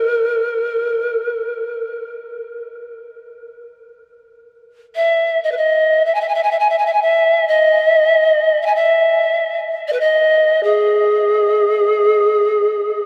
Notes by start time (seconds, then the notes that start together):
Already playing: A#4
4.96 E5
5.44 D#5
5.52 B4
5.57 D#5
6.06 E5
6.15 G#5
6.21 E5
6.29 G#5
6.35 E5
6.43 G#5
6.51 E5
6.59 G#5
6.70 E5
6.78 G#5
6.86 E5
6.93 G#5
7.02 E5
7.48 D#5
8.62 E5
8.66 G#5
8.75 E5
9.88 D#5
9.93 B4
10.00 D#5
10.63 G#4